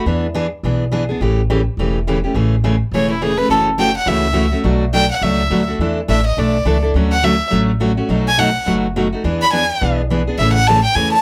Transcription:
0.06 upright bass E2, steel-string acoustic guitar E3 B3 D4 G#4
0.34 steel-string acoustic guitar E3 B3 D4 G#4
0.63 upright bass B1, steel-string acoustic guitar E3 B3 D4 G#4
0.92 steel-string acoustic guitar E3 B3 D4 G#4
1.09 steel-string acoustic guitar B3 D4 G#4
1.21 upright bass A1, steel-string acoustic guitar C#3 E3 A3 C#4 G4
1.50 steel-string acoustic guitar C#3 E3 A3 C#4 G4
1.77 upright bass E1, steel-string acoustic guitar C#3 E3 A3 C#4 G4
2.07 steel-string acoustic guitar C#3 E3 A3 C#4 G4
2.24 steel-string acoustic guitar A3 C#4 G4
2.34 upright bass A1, steel-string acoustic guitar C#3 E3 A3 C#4 G#4
2.64 steel-string acoustic guitar C#3 E3 A3 C#4 G#4
2.92 upright bass E1, steel-string acoustic guitar C#3 E3 A3 C#4 G#4, violin C#5
3.11 violin E4
3.21 steel-string acoustic guitar C#3 E3 A3 C#4 G#4, violin G#4
3.38 steel-string acoustic guitar A3 C#4 G#4, violin B4
3.49 upright bass F#1, steel-string acoustic guitar C#3 E3 A3 C#4 F#4, violin A4
3.78 steel-string acoustic guitar C#3 E3 A3 C#4 F#4, violin G5
3.97 violin F#5
4.06 upright bass C#2, steel-string acoustic guitar C#3 E3 A3 C#4 F#4, violin E5
4.33 steel-string acoustic guitar C#3 E3 A3 C#4 F#4
4.52 steel-string acoustic guitar A3 C#4 F#4
4.64 upright bass B1, steel-string acoustic guitar B2 F#3 A3 D4 F#4
4.93 steel-string acoustic guitar B2 F#3 A3 D4 F#4, violin G5
5.12 violin F#5
5.22 upright bass C#2, steel-string acoustic guitar B2 F#3 A3 D4 F#4, violin E5
5.50 upright bass D2, steel-string acoustic guitar B2 F#3 A3 D4 F#4
5.68 steel-string acoustic guitar A3 D4 F#4
5.79 upright bass E2, steel-string acoustic guitar E3 A3 D4 E4 A4
6.08 upright bass A1, steel-string acoustic guitar E3 A3 D4 E4 A4, violin E5
6.27 violin D#5
6.37 upright bass B1, steel-string acoustic guitar E3 A3 D4 E4 A4, violin D5
6.65 upright bass C#2, steel-string acoustic guitar E3 A3 D4 E4 A4
6.82 steel-string acoustic guitar D4 E4 A4
6.94 upright bass D2, steel-string acoustic guitar D3 F#3 A3 C#4 F#4
7.12 violin F#5
7.23 steel-string acoustic guitar D3 F#3 A3 C#4 F#4, violin E5
7.50 upright bass A1, steel-string acoustic guitar D3 F#3 A3 C#4 F#4
7.80 steel-string acoustic guitar D3 F#3 A3 C#4 F#4
7.97 steel-string acoustic guitar A3 C#4 F#4
8.09 upright bass B1, steel-string acoustic guitar B2 F#3 A3 D#4 F#4
8.28 violin G#5
8.38 steel-string acoustic guitar B2 F#3 A3 D#4 F#4, violin F#5
8.66 upright bass F#1, steel-string acoustic guitar B2 F#3 A3 D#4 F#4
8.96 steel-string acoustic guitar B2 F#3 A3 D#4 F#4
9.12 steel-string acoustic guitar A3 D#4 F#4
9.24 upright bass E2, steel-string acoustic guitar E3 B3 D4 G#4
9.42 violin B5
9.52 steel-string acoustic guitar E3 B3 D4 G#4, violin G#5
9.81 upright bass B1, steel-string acoustic guitar E3 B3 D4 G#4
10.10 steel-string acoustic guitar E3 B3 D4 G#4
10.27 steel-string acoustic guitar B3 D4 G#4
10.38 upright bass A1, steel-string acoustic guitar C#3 E3 A3 C#4 G#4, violin E5
10.53 violin F#5
10.67 steel-string acoustic guitar C#3 E3 A3 C#4 G#4, violin A5
10.84 violin G5
10.95 upright bass E2, steel-string acoustic guitar C#3 E3 A3 C#4 G#4, violin G#5
11.13 violin A5

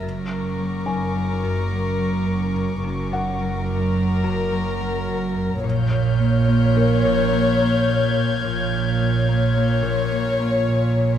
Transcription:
0.02 double bass section F#1, marimba F#2, cello section F#2, violin section A#4 C#6 D6
0.31 marimba F#2
0.59 marimba F#3
0.86 marimba F#3, felt piano G#5
1.16 marimba F#3
1.44 marimba F#2
1.72 marimba F#3
1.99 marimba F#3
2.28 marimba F#2
2.56 marimba F#2
2.82 double bass section F#1, cello section F#2, marimba F#2, violin section A#4
3.12 marimba F#2, felt piano F#5
3.40 marimba F#3
3.69 marimba F#3
3.96 marimba F#3
4.24 marimba F#2
4.52 marimba F#3
4.81 marimba F#3
5.08 marimba F#2
5.36 marimba F#2
5.63 double bass section A#1, cello section A#2, marimba A#2, violin section C#5 F6 G6
5.92 marimba A#2
6.20 marimba A#3
6.49 marimba A#3
6.76 marimba A#3, felt piano A#4, violin section G#6
7.05 marimba A#2
7.33 marimba A#3
7.62 marimba A#3
7.89 marimba A#2
8.17 marimba A#2
8.43 double bass section A#1, cello section A#2, marimba A#2, violin section C#5
8.73 marimba A#2
9.00 marimba A#3
9.29 marimba A#3
9.56 marimba A#3
9.83 marimba A#2
10.12 marimba A#3
10.40 marimba A#3
10.68 marimba A#2
10.97 marimba A#2

